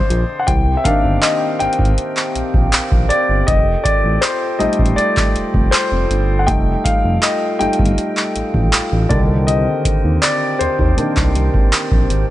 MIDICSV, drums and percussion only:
0, 0, Header, 1, 2, 480
1, 0, Start_track
1, 0, Key_signature, -3, "minor"
1, 0, Tempo, 750000
1, 306, Time_signature, 4, 2, 24, 8
1, 7874, End_track
2, 0, Start_track
2, 0, Title_t, "Drums"
2, 67, Note_on_c, 9, 42, 55
2, 131, Note_off_c, 9, 42, 0
2, 306, Note_on_c, 9, 36, 114
2, 306, Note_on_c, 9, 42, 75
2, 370, Note_off_c, 9, 36, 0
2, 370, Note_off_c, 9, 42, 0
2, 544, Note_on_c, 9, 36, 92
2, 546, Note_on_c, 9, 42, 73
2, 608, Note_off_c, 9, 36, 0
2, 610, Note_off_c, 9, 42, 0
2, 784, Note_on_c, 9, 39, 101
2, 787, Note_on_c, 9, 42, 66
2, 848, Note_off_c, 9, 39, 0
2, 851, Note_off_c, 9, 42, 0
2, 1026, Note_on_c, 9, 42, 57
2, 1090, Note_off_c, 9, 42, 0
2, 1105, Note_on_c, 9, 42, 47
2, 1146, Note_on_c, 9, 36, 91
2, 1169, Note_off_c, 9, 42, 0
2, 1185, Note_on_c, 9, 42, 35
2, 1210, Note_off_c, 9, 36, 0
2, 1249, Note_off_c, 9, 42, 0
2, 1266, Note_on_c, 9, 42, 61
2, 1330, Note_off_c, 9, 42, 0
2, 1387, Note_on_c, 9, 39, 62
2, 1451, Note_off_c, 9, 39, 0
2, 1507, Note_on_c, 9, 42, 53
2, 1571, Note_off_c, 9, 42, 0
2, 1626, Note_on_c, 9, 36, 91
2, 1690, Note_off_c, 9, 36, 0
2, 1746, Note_on_c, 9, 42, 59
2, 1747, Note_on_c, 9, 39, 106
2, 1810, Note_off_c, 9, 42, 0
2, 1811, Note_off_c, 9, 39, 0
2, 1867, Note_on_c, 9, 36, 93
2, 1931, Note_off_c, 9, 36, 0
2, 1986, Note_on_c, 9, 42, 58
2, 2050, Note_off_c, 9, 42, 0
2, 2226, Note_on_c, 9, 36, 115
2, 2227, Note_on_c, 9, 42, 76
2, 2290, Note_off_c, 9, 36, 0
2, 2291, Note_off_c, 9, 42, 0
2, 2465, Note_on_c, 9, 36, 92
2, 2468, Note_on_c, 9, 42, 74
2, 2529, Note_off_c, 9, 36, 0
2, 2532, Note_off_c, 9, 42, 0
2, 2705, Note_on_c, 9, 39, 97
2, 2708, Note_on_c, 9, 42, 65
2, 2769, Note_off_c, 9, 39, 0
2, 2772, Note_off_c, 9, 42, 0
2, 2947, Note_on_c, 9, 42, 59
2, 3011, Note_off_c, 9, 42, 0
2, 3026, Note_on_c, 9, 42, 49
2, 3066, Note_on_c, 9, 36, 84
2, 3090, Note_off_c, 9, 42, 0
2, 3108, Note_on_c, 9, 42, 35
2, 3130, Note_off_c, 9, 36, 0
2, 3172, Note_off_c, 9, 42, 0
2, 3188, Note_on_c, 9, 42, 63
2, 3252, Note_off_c, 9, 42, 0
2, 3309, Note_on_c, 9, 39, 64
2, 3310, Note_on_c, 9, 36, 87
2, 3373, Note_off_c, 9, 39, 0
2, 3374, Note_off_c, 9, 36, 0
2, 3428, Note_on_c, 9, 42, 49
2, 3492, Note_off_c, 9, 42, 0
2, 3547, Note_on_c, 9, 36, 92
2, 3611, Note_off_c, 9, 36, 0
2, 3668, Note_on_c, 9, 42, 59
2, 3669, Note_on_c, 9, 39, 112
2, 3732, Note_off_c, 9, 42, 0
2, 3733, Note_off_c, 9, 39, 0
2, 3909, Note_on_c, 9, 42, 59
2, 3973, Note_off_c, 9, 42, 0
2, 4146, Note_on_c, 9, 36, 115
2, 4148, Note_on_c, 9, 42, 71
2, 4210, Note_off_c, 9, 36, 0
2, 4212, Note_off_c, 9, 42, 0
2, 4385, Note_on_c, 9, 36, 90
2, 4388, Note_on_c, 9, 42, 74
2, 4449, Note_off_c, 9, 36, 0
2, 4452, Note_off_c, 9, 42, 0
2, 4625, Note_on_c, 9, 39, 102
2, 4628, Note_on_c, 9, 42, 70
2, 4689, Note_off_c, 9, 39, 0
2, 4692, Note_off_c, 9, 42, 0
2, 4868, Note_on_c, 9, 42, 58
2, 4932, Note_off_c, 9, 42, 0
2, 4948, Note_on_c, 9, 42, 49
2, 4987, Note_on_c, 9, 36, 86
2, 5012, Note_off_c, 9, 42, 0
2, 5027, Note_on_c, 9, 42, 36
2, 5051, Note_off_c, 9, 36, 0
2, 5091, Note_off_c, 9, 42, 0
2, 5107, Note_on_c, 9, 42, 62
2, 5171, Note_off_c, 9, 42, 0
2, 5229, Note_on_c, 9, 39, 62
2, 5293, Note_off_c, 9, 39, 0
2, 5348, Note_on_c, 9, 42, 53
2, 5412, Note_off_c, 9, 42, 0
2, 5467, Note_on_c, 9, 36, 89
2, 5531, Note_off_c, 9, 36, 0
2, 5587, Note_on_c, 9, 39, 118
2, 5587, Note_on_c, 9, 42, 58
2, 5651, Note_off_c, 9, 39, 0
2, 5651, Note_off_c, 9, 42, 0
2, 5827, Note_on_c, 9, 36, 106
2, 5827, Note_on_c, 9, 42, 58
2, 5891, Note_off_c, 9, 36, 0
2, 5891, Note_off_c, 9, 42, 0
2, 6068, Note_on_c, 9, 42, 78
2, 6132, Note_off_c, 9, 42, 0
2, 6304, Note_on_c, 9, 36, 91
2, 6306, Note_on_c, 9, 42, 72
2, 6368, Note_off_c, 9, 36, 0
2, 6370, Note_off_c, 9, 42, 0
2, 6545, Note_on_c, 9, 39, 105
2, 6548, Note_on_c, 9, 42, 65
2, 6609, Note_off_c, 9, 39, 0
2, 6612, Note_off_c, 9, 42, 0
2, 6788, Note_on_c, 9, 42, 58
2, 6852, Note_off_c, 9, 42, 0
2, 6906, Note_on_c, 9, 36, 92
2, 6970, Note_off_c, 9, 36, 0
2, 7027, Note_on_c, 9, 42, 63
2, 7091, Note_off_c, 9, 42, 0
2, 7147, Note_on_c, 9, 39, 63
2, 7149, Note_on_c, 9, 36, 90
2, 7211, Note_off_c, 9, 39, 0
2, 7213, Note_off_c, 9, 36, 0
2, 7267, Note_on_c, 9, 42, 52
2, 7331, Note_off_c, 9, 42, 0
2, 7386, Note_on_c, 9, 36, 85
2, 7450, Note_off_c, 9, 36, 0
2, 7506, Note_on_c, 9, 42, 62
2, 7507, Note_on_c, 9, 39, 113
2, 7570, Note_off_c, 9, 42, 0
2, 7571, Note_off_c, 9, 39, 0
2, 7626, Note_on_c, 9, 36, 94
2, 7690, Note_off_c, 9, 36, 0
2, 7745, Note_on_c, 9, 42, 62
2, 7809, Note_off_c, 9, 42, 0
2, 7874, End_track
0, 0, End_of_file